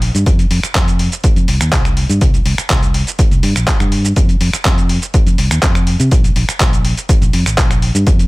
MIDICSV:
0, 0, Header, 1, 4, 480
1, 0, Start_track
1, 0, Key_signature, -4, "minor"
1, 0, Tempo, 487805
1, 257, Time_signature, 4, 2, 24, 8
1, 8142, End_track
2, 0, Start_track
2, 0, Title_t, "Fingered electric bass"
2, 0, Program_c, 0, 33
2, 143, Note_on_c, 0, 43, 90
2, 227, Note_off_c, 0, 43, 0
2, 497, Note_on_c, 0, 41, 94
2, 589, Note_off_c, 0, 41, 0
2, 739, Note_on_c, 0, 41, 86
2, 1050, Note_off_c, 0, 41, 0
2, 1341, Note_on_c, 0, 41, 92
2, 1426, Note_off_c, 0, 41, 0
2, 1457, Note_on_c, 0, 36, 98
2, 1549, Note_off_c, 0, 36, 0
2, 1581, Note_on_c, 0, 39, 79
2, 1666, Note_off_c, 0, 39, 0
2, 2060, Note_on_c, 0, 43, 92
2, 2145, Note_off_c, 0, 43, 0
2, 2178, Note_on_c, 0, 36, 96
2, 2357, Note_off_c, 0, 36, 0
2, 2414, Note_on_c, 0, 36, 93
2, 2508, Note_off_c, 0, 36, 0
2, 2657, Note_on_c, 0, 36, 83
2, 2969, Note_off_c, 0, 36, 0
2, 3260, Note_on_c, 0, 36, 89
2, 3346, Note_off_c, 0, 36, 0
2, 3375, Note_on_c, 0, 43, 99
2, 3468, Note_off_c, 0, 43, 0
2, 3499, Note_on_c, 0, 34, 78
2, 3585, Note_off_c, 0, 34, 0
2, 3739, Note_on_c, 0, 43, 95
2, 4047, Note_off_c, 0, 43, 0
2, 4097, Note_on_c, 0, 41, 96
2, 4276, Note_off_c, 0, 41, 0
2, 4335, Note_on_c, 0, 41, 94
2, 4428, Note_off_c, 0, 41, 0
2, 4577, Note_on_c, 0, 41, 86
2, 4889, Note_off_c, 0, 41, 0
2, 5181, Note_on_c, 0, 41, 90
2, 5266, Note_off_c, 0, 41, 0
2, 5296, Note_on_c, 0, 36, 97
2, 5388, Note_off_c, 0, 36, 0
2, 5420, Note_on_c, 0, 39, 80
2, 5505, Note_off_c, 0, 39, 0
2, 5538, Note_on_c, 0, 41, 88
2, 5849, Note_off_c, 0, 41, 0
2, 5900, Note_on_c, 0, 48, 93
2, 5985, Note_off_c, 0, 48, 0
2, 6017, Note_on_c, 0, 34, 95
2, 6196, Note_off_c, 0, 34, 0
2, 6255, Note_on_c, 0, 34, 93
2, 6348, Note_off_c, 0, 34, 0
2, 6497, Note_on_c, 0, 34, 85
2, 6809, Note_off_c, 0, 34, 0
2, 7100, Note_on_c, 0, 34, 92
2, 7185, Note_off_c, 0, 34, 0
2, 7214, Note_on_c, 0, 41, 103
2, 7308, Note_off_c, 0, 41, 0
2, 7340, Note_on_c, 0, 32, 81
2, 7425, Note_off_c, 0, 32, 0
2, 7458, Note_on_c, 0, 34, 88
2, 7769, Note_off_c, 0, 34, 0
2, 7820, Note_on_c, 0, 43, 95
2, 7905, Note_off_c, 0, 43, 0
2, 8142, End_track
3, 0, Start_track
3, 0, Title_t, "Muted fingered electric bass strokes"
3, 624, Note_on_c, 9, 29, 41
3, 722, Note_off_c, 9, 29, 0
3, 1218, Note_on_c, 9, 29, 41
3, 1316, Note_off_c, 9, 29, 0
3, 2540, Note_on_c, 9, 29, 41
3, 2639, Note_off_c, 9, 29, 0
3, 4461, Note_on_c, 9, 29, 41
3, 4559, Note_off_c, 9, 29, 0
3, 5057, Note_on_c, 9, 29, 42
3, 5155, Note_off_c, 9, 29, 0
3, 6380, Note_on_c, 9, 29, 43
3, 6479, Note_off_c, 9, 29, 0
3, 8142, End_track
4, 0, Start_track
4, 0, Title_t, "Drums"
4, 18, Note_on_c, 9, 46, 90
4, 117, Note_off_c, 9, 46, 0
4, 145, Note_on_c, 9, 42, 36
4, 149, Note_on_c, 9, 82, 60
4, 243, Note_off_c, 9, 42, 0
4, 247, Note_off_c, 9, 82, 0
4, 259, Note_on_c, 9, 36, 118
4, 259, Note_on_c, 9, 42, 88
4, 263, Note_on_c, 9, 82, 51
4, 357, Note_off_c, 9, 36, 0
4, 357, Note_off_c, 9, 42, 0
4, 361, Note_off_c, 9, 82, 0
4, 384, Note_on_c, 9, 42, 36
4, 388, Note_on_c, 9, 82, 31
4, 482, Note_off_c, 9, 42, 0
4, 486, Note_off_c, 9, 82, 0
4, 499, Note_on_c, 9, 46, 110
4, 597, Note_off_c, 9, 46, 0
4, 625, Note_on_c, 9, 26, 76
4, 625, Note_on_c, 9, 42, 37
4, 629, Note_on_c, 9, 82, 61
4, 723, Note_off_c, 9, 26, 0
4, 723, Note_off_c, 9, 42, 0
4, 727, Note_off_c, 9, 82, 0
4, 739, Note_on_c, 9, 36, 106
4, 739, Note_on_c, 9, 42, 84
4, 740, Note_on_c, 9, 39, 114
4, 743, Note_on_c, 9, 82, 52
4, 837, Note_off_c, 9, 36, 0
4, 838, Note_off_c, 9, 39, 0
4, 838, Note_off_c, 9, 42, 0
4, 842, Note_off_c, 9, 82, 0
4, 864, Note_on_c, 9, 42, 37
4, 868, Note_on_c, 9, 82, 32
4, 962, Note_off_c, 9, 42, 0
4, 966, Note_off_c, 9, 82, 0
4, 977, Note_on_c, 9, 46, 92
4, 1076, Note_off_c, 9, 46, 0
4, 1103, Note_on_c, 9, 42, 36
4, 1107, Note_on_c, 9, 82, 60
4, 1201, Note_off_c, 9, 42, 0
4, 1205, Note_off_c, 9, 82, 0
4, 1216, Note_on_c, 9, 42, 84
4, 1218, Note_on_c, 9, 36, 121
4, 1220, Note_on_c, 9, 82, 51
4, 1315, Note_off_c, 9, 42, 0
4, 1317, Note_off_c, 9, 36, 0
4, 1319, Note_off_c, 9, 82, 0
4, 1342, Note_on_c, 9, 42, 37
4, 1346, Note_on_c, 9, 82, 31
4, 1440, Note_off_c, 9, 42, 0
4, 1444, Note_off_c, 9, 82, 0
4, 1456, Note_on_c, 9, 46, 106
4, 1555, Note_off_c, 9, 46, 0
4, 1581, Note_on_c, 9, 26, 78
4, 1581, Note_on_c, 9, 42, 38
4, 1585, Note_on_c, 9, 82, 61
4, 1680, Note_off_c, 9, 26, 0
4, 1680, Note_off_c, 9, 42, 0
4, 1684, Note_off_c, 9, 82, 0
4, 1697, Note_on_c, 9, 39, 118
4, 1697, Note_on_c, 9, 42, 90
4, 1698, Note_on_c, 9, 36, 102
4, 1701, Note_on_c, 9, 82, 51
4, 1795, Note_off_c, 9, 42, 0
4, 1796, Note_off_c, 9, 36, 0
4, 1796, Note_off_c, 9, 39, 0
4, 1799, Note_off_c, 9, 82, 0
4, 1822, Note_on_c, 9, 26, 63
4, 1822, Note_on_c, 9, 42, 36
4, 1826, Note_on_c, 9, 82, 30
4, 1920, Note_off_c, 9, 26, 0
4, 1920, Note_off_c, 9, 42, 0
4, 1924, Note_off_c, 9, 82, 0
4, 1937, Note_on_c, 9, 46, 89
4, 2035, Note_off_c, 9, 46, 0
4, 2062, Note_on_c, 9, 42, 36
4, 2066, Note_on_c, 9, 82, 60
4, 2160, Note_off_c, 9, 42, 0
4, 2164, Note_off_c, 9, 82, 0
4, 2176, Note_on_c, 9, 42, 83
4, 2178, Note_on_c, 9, 36, 113
4, 2180, Note_on_c, 9, 82, 51
4, 2275, Note_off_c, 9, 42, 0
4, 2276, Note_off_c, 9, 36, 0
4, 2279, Note_off_c, 9, 82, 0
4, 2302, Note_on_c, 9, 42, 36
4, 2306, Note_on_c, 9, 82, 31
4, 2400, Note_off_c, 9, 42, 0
4, 2404, Note_off_c, 9, 82, 0
4, 2416, Note_on_c, 9, 46, 106
4, 2514, Note_off_c, 9, 46, 0
4, 2541, Note_on_c, 9, 26, 79
4, 2541, Note_on_c, 9, 42, 36
4, 2545, Note_on_c, 9, 82, 62
4, 2639, Note_off_c, 9, 26, 0
4, 2639, Note_off_c, 9, 42, 0
4, 2643, Note_off_c, 9, 82, 0
4, 2656, Note_on_c, 9, 42, 82
4, 2657, Note_on_c, 9, 36, 101
4, 2657, Note_on_c, 9, 39, 113
4, 2660, Note_on_c, 9, 82, 52
4, 2755, Note_off_c, 9, 39, 0
4, 2755, Note_off_c, 9, 42, 0
4, 2756, Note_off_c, 9, 36, 0
4, 2759, Note_off_c, 9, 82, 0
4, 2781, Note_on_c, 9, 42, 37
4, 2786, Note_on_c, 9, 82, 33
4, 2880, Note_off_c, 9, 42, 0
4, 2884, Note_off_c, 9, 82, 0
4, 2896, Note_on_c, 9, 46, 94
4, 2994, Note_off_c, 9, 46, 0
4, 3022, Note_on_c, 9, 42, 34
4, 3026, Note_on_c, 9, 82, 60
4, 3120, Note_off_c, 9, 42, 0
4, 3124, Note_off_c, 9, 82, 0
4, 3136, Note_on_c, 9, 42, 83
4, 3137, Note_on_c, 9, 36, 121
4, 3140, Note_on_c, 9, 82, 51
4, 3235, Note_off_c, 9, 42, 0
4, 3236, Note_off_c, 9, 36, 0
4, 3239, Note_off_c, 9, 82, 0
4, 3262, Note_on_c, 9, 42, 35
4, 3266, Note_on_c, 9, 82, 31
4, 3360, Note_off_c, 9, 42, 0
4, 3364, Note_off_c, 9, 82, 0
4, 3376, Note_on_c, 9, 46, 107
4, 3474, Note_off_c, 9, 46, 0
4, 3502, Note_on_c, 9, 26, 82
4, 3502, Note_on_c, 9, 42, 36
4, 3506, Note_on_c, 9, 82, 61
4, 3600, Note_off_c, 9, 26, 0
4, 3600, Note_off_c, 9, 42, 0
4, 3604, Note_off_c, 9, 82, 0
4, 3616, Note_on_c, 9, 39, 113
4, 3616, Note_on_c, 9, 42, 86
4, 3617, Note_on_c, 9, 36, 104
4, 3620, Note_on_c, 9, 82, 53
4, 3714, Note_off_c, 9, 42, 0
4, 3715, Note_off_c, 9, 39, 0
4, 3716, Note_off_c, 9, 36, 0
4, 3718, Note_off_c, 9, 82, 0
4, 3742, Note_on_c, 9, 26, 64
4, 3742, Note_on_c, 9, 42, 34
4, 3746, Note_on_c, 9, 82, 30
4, 3840, Note_off_c, 9, 26, 0
4, 3840, Note_off_c, 9, 42, 0
4, 3844, Note_off_c, 9, 82, 0
4, 3856, Note_on_c, 9, 46, 90
4, 3955, Note_off_c, 9, 46, 0
4, 3982, Note_on_c, 9, 42, 36
4, 3986, Note_on_c, 9, 82, 62
4, 4081, Note_off_c, 9, 42, 0
4, 4085, Note_off_c, 9, 82, 0
4, 4096, Note_on_c, 9, 42, 84
4, 4098, Note_on_c, 9, 36, 113
4, 4100, Note_on_c, 9, 82, 55
4, 4195, Note_off_c, 9, 42, 0
4, 4196, Note_off_c, 9, 36, 0
4, 4199, Note_off_c, 9, 82, 0
4, 4221, Note_on_c, 9, 42, 36
4, 4225, Note_on_c, 9, 82, 32
4, 4320, Note_off_c, 9, 42, 0
4, 4324, Note_off_c, 9, 82, 0
4, 4336, Note_on_c, 9, 46, 103
4, 4434, Note_off_c, 9, 46, 0
4, 4462, Note_on_c, 9, 26, 79
4, 4462, Note_on_c, 9, 42, 37
4, 4466, Note_on_c, 9, 82, 64
4, 4561, Note_off_c, 9, 26, 0
4, 4561, Note_off_c, 9, 42, 0
4, 4564, Note_off_c, 9, 82, 0
4, 4577, Note_on_c, 9, 39, 109
4, 4577, Note_on_c, 9, 42, 83
4, 4578, Note_on_c, 9, 36, 102
4, 4581, Note_on_c, 9, 82, 54
4, 4675, Note_off_c, 9, 39, 0
4, 4675, Note_off_c, 9, 42, 0
4, 4676, Note_off_c, 9, 36, 0
4, 4679, Note_off_c, 9, 82, 0
4, 4702, Note_on_c, 9, 42, 38
4, 4706, Note_on_c, 9, 82, 34
4, 4801, Note_off_c, 9, 42, 0
4, 4805, Note_off_c, 9, 82, 0
4, 4816, Note_on_c, 9, 46, 91
4, 4914, Note_off_c, 9, 46, 0
4, 4941, Note_on_c, 9, 42, 35
4, 4945, Note_on_c, 9, 82, 62
4, 5040, Note_off_c, 9, 42, 0
4, 5044, Note_off_c, 9, 82, 0
4, 5056, Note_on_c, 9, 42, 84
4, 5058, Note_on_c, 9, 36, 117
4, 5060, Note_on_c, 9, 82, 53
4, 5154, Note_off_c, 9, 42, 0
4, 5156, Note_off_c, 9, 36, 0
4, 5158, Note_off_c, 9, 82, 0
4, 5181, Note_on_c, 9, 42, 36
4, 5185, Note_on_c, 9, 82, 33
4, 5280, Note_off_c, 9, 42, 0
4, 5284, Note_off_c, 9, 82, 0
4, 5296, Note_on_c, 9, 46, 103
4, 5394, Note_off_c, 9, 46, 0
4, 5422, Note_on_c, 9, 26, 80
4, 5422, Note_on_c, 9, 42, 36
4, 5426, Note_on_c, 9, 82, 65
4, 5520, Note_off_c, 9, 26, 0
4, 5520, Note_off_c, 9, 42, 0
4, 5524, Note_off_c, 9, 82, 0
4, 5535, Note_on_c, 9, 42, 86
4, 5536, Note_on_c, 9, 39, 111
4, 5538, Note_on_c, 9, 36, 100
4, 5539, Note_on_c, 9, 82, 54
4, 5634, Note_off_c, 9, 39, 0
4, 5634, Note_off_c, 9, 42, 0
4, 5636, Note_off_c, 9, 36, 0
4, 5638, Note_off_c, 9, 82, 0
4, 5660, Note_on_c, 9, 26, 64
4, 5660, Note_on_c, 9, 42, 35
4, 5664, Note_on_c, 9, 82, 31
4, 5759, Note_off_c, 9, 26, 0
4, 5759, Note_off_c, 9, 42, 0
4, 5763, Note_off_c, 9, 82, 0
4, 5775, Note_on_c, 9, 46, 86
4, 5873, Note_off_c, 9, 46, 0
4, 5900, Note_on_c, 9, 42, 36
4, 5904, Note_on_c, 9, 82, 66
4, 5999, Note_off_c, 9, 42, 0
4, 6003, Note_off_c, 9, 82, 0
4, 6016, Note_on_c, 9, 42, 89
4, 6018, Note_on_c, 9, 36, 112
4, 6020, Note_on_c, 9, 82, 56
4, 6114, Note_off_c, 9, 42, 0
4, 6116, Note_off_c, 9, 36, 0
4, 6118, Note_off_c, 9, 82, 0
4, 6142, Note_on_c, 9, 42, 37
4, 6146, Note_on_c, 9, 82, 33
4, 6240, Note_off_c, 9, 42, 0
4, 6244, Note_off_c, 9, 82, 0
4, 6257, Note_on_c, 9, 46, 101
4, 6355, Note_off_c, 9, 46, 0
4, 6383, Note_on_c, 9, 26, 76
4, 6383, Note_on_c, 9, 42, 38
4, 6387, Note_on_c, 9, 82, 68
4, 6481, Note_off_c, 9, 26, 0
4, 6481, Note_off_c, 9, 42, 0
4, 6485, Note_off_c, 9, 82, 0
4, 6497, Note_on_c, 9, 42, 89
4, 6498, Note_on_c, 9, 36, 96
4, 6498, Note_on_c, 9, 39, 106
4, 6501, Note_on_c, 9, 82, 56
4, 6596, Note_off_c, 9, 36, 0
4, 6596, Note_off_c, 9, 39, 0
4, 6596, Note_off_c, 9, 42, 0
4, 6599, Note_off_c, 9, 82, 0
4, 6623, Note_on_c, 9, 42, 38
4, 6627, Note_on_c, 9, 82, 34
4, 6721, Note_off_c, 9, 42, 0
4, 6725, Note_off_c, 9, 82, 0
4, 6736, Note_on_c, 9, 46, 86
4, 6835, Note_off_c, 9, 46, 0
4, 6863, Note_on_c, 9, 42, 36
4, 6866, Note_on_c, 9, 82, 64
4, 6961, Note_off_c, 9, 42, 0
4, 6965, Note_off_c, 9, 82, 0
4, 6977, Note_on_c, 9, 42, 87
4, 6978, Note_on_c, 9, 36, 113
4, 6981, Note_on_c, 9, 82, 56
4, 7075, Note_off_c, 9, 42, 0
4, 7076, Note_off_c, 9, 36, 0
4, 7079, Note_off_c, 9, 82, 0
4, 7102, Note_on_c, 9, 42, 39
4, 7106, Note_on_c, 9, 82, 33
4, 7200, Note_off_c, 9, 42, 0
4, 7204, Note_off_c, 9, 82, 0
4, 7216, Note_on_c, 9, 46, 100
4, 7314, Note_off_c, 9, 46, 0
4, 7342, Note_on_c, 9, 26, 75
4, 7342, Note_on_c, 9, 42, 39
4, 7346, Note_on_c, 9, 82, 69
4, 7441, Note_off_c, 9, 26, 0
4, 7441, Note_off_c, 9, 42, 0
4, 7445, Note_off_c, 9, 82, 0
4, 7458, Note_on_c, 9, 36, 99
4, 7458, Note_on_c, 9, 39, 110
4, 7458, Note_on_c, 9, 42, 91
4, 7462, Note_on_c, 9, 82, 58
4, 7556, Note_off_c, 9, 36, 0
4, 7556, Note_off_c, 9, 39, 0
4, 7556, Note_off_c, 9, 42, 0
4, 7560, Note_off_c, 9, 82, 0
4, 7583, Note_on_c, 9, 26, 63
4, 7583, Note_on_c, 9, 42, 37
4, 7587, Note_on_c, 9, 82, 33
4, 7681, Note_off_c, 9, 26, 0
4, 7681, Note_off_c, 9, 42, 0
4, 7685, Note_off_c, 9, 82, 0
4, 7698, Note_on_c, 9, 46, 84
4, 7797, Note_off_c, 9, 46, 0
4, 7823, Note_on_c, 9, 42, 37
4, 7827, Note_on_c, 9, 82, 66
4, 7921, Note_off_c, 9, 42, 0
4, 7925, Note_off_c, 9, 82, 0
4, 7937, Note_on_c, 9, 42, 93
4, 7938, Note_on_c, 9, 36, 107
4, 7941, Note_on_c, 9, 82, 57
4, 8036, Note_off_c, 9, 36, 0
4, 8036, Note_off_c, 9, 42, 0
4, 8040, Note_off_c, 9, 82, 0
4, 8063, Note_on_c, 9, 42, 39
4, 8067, Note_on_c, 9, 82, 34
4, 8142, Note_off_c, 9, 42, 0
4, 8142, Note_off_c, 9, 82, 0
4, 8142, End_track
0, 0, End_of_file